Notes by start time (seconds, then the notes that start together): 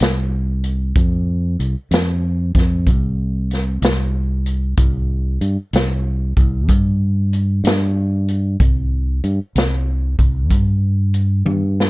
0.00 C2, snare, closed hi-hat
0.64 closed hi-hat
0.95 F2, kick, closed hi-hat
1.59 C2, closed hi-hat
1.91 F2, snare, closed hi-hat
2.55 F2, kick, snare, closed hi-hat
2.86 C2, kick, closed hi-hat
3.51 snare, closed hi-hat
3.82 C2, snare, closed hi-hat
4.46 closed hi-hat
4.77 C2, kick, closed hi-hat
5.41 G2, closed hi-hat
5.73 C2, snare, closed hi-hat
6.37 C2, kick, closed hi-hat
6.69 G2, kick, closed hi-hat
7.33 closed hi-hat
7.64 G2, snare, closed hi-hat
8.28 closed hi-hat
8.60 C2, kick, closed hi-hat
9.24 G2, closed hi-hat
9.55 C2, snare, closed hi-hat
10.19 C2, kick, closed hi-hat
10.50 G2, kick, closed hi-hat
11.14 closed hi-hat
11.45 G2, high tom
11.80 snare